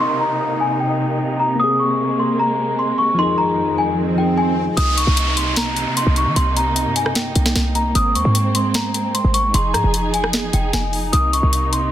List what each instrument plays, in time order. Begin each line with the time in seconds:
Already playing: synth keys C3 A#3 D#4, string section C3 A#3 D#4, downlifter
0.00 celesta C6
0.21 celesta A#5
0.60 celesta G#5
0.80 celesta G5
1.40 celesta A#5
1.55 synth keys A#3
1.60 string section G#3 A#3, synth keys C4, celesta D#6, swell
1.64 synth keys G#4
1.80 celesta C#6
2.19 celesta C6
2.39 celesta A#5
2.79 celesta C6
2.98 celesta C#6
3.14 synth keys F3
3.18 string section F2 D#3, synth keys D#4, celesta C6
3.22 synth keys G#4
3.38 celesta A#5
3.78 celesta G#5
4.16 synth keys F3 D#4, celesta G5
4.20 synth keys G#4
4.38 celesta G#5
4.77 808-style bass C2, string section C3 A#3 D#4, celesta D#6, closed hi-hat, downlifter
4.97 celesta C#6, closed hi-hat
5.07 808-style bass C2
5.17 closed hi-hat
5.37 celesta C6, closed hi-hat
5.56 celesta A#5, snare, closed hi-hat
5.77 closed hi-hat
5.87 808-style bass C3
5.97 celesta C6, closed hi-hat
6.07 808-style bass C2
6.16 celesta C#6, closed hi-hat
6.26 808-style bass D#3
6.36 808-style bass C2, celesta C6, closed hi-hat
6.56 celesta A#5, closed hi-hat
6.76 closed hi-hat
6.86 808-style bass G2
6.96 celesta G#5, closed hi-hat
7.06 cross-stick
7.15 celesta G5, snare, closed hi-hat
7.36 808-style bass C2, closed hi-hat
7.46 snare
7.56 808-style bass C2, snare, closed hi-hat
7.75 celesta A#5, closed hi-hat
7.95 808-style bass G#1, string section G#3 C4, celesta D#6, closed hi-hat
8.15 808-style bass D#2, celesta C#6, closed hi-hat
8.25 808-style bass G#2
8.35 closed hi-hat
8.55 celesta C6, closed hi-hat
8.74 celesta A#5, snare, closed hi-hat
8.94 closed hi-hat
9.15 celesta C6, closed hi-hat
9.24 808-style bass G#1
9.34 celesta C#6, closed hi-hat
9.54 808-style bass F1, string section F3 D#4 G#4, celesta C6, closed hi-hat
9.74 808-style bass G#2, celesta A#5, cross-stick, closed hi-hat
9.84 808-style bass F1
9.94 closed hi-hat
10.14 celesta G#5, closed hi-hat
10.24 cross-stick
10.33 snare, closed hi-hat
10.53 808-style bass F1, celesta G5, closed hi-hat
10.73 808-style bass F1, celesta G#5, snare, closed hi-hat
10.93 open hi-hat
11.13 808-style bass C2, string section C3 A#3, celesta D#6, closed hi-hat
11.33 celesta C#6, closed hi-hat
11.43 808-style bass C2
11.53 closed hi-hat
11.73 celesta C6, closed hi-hat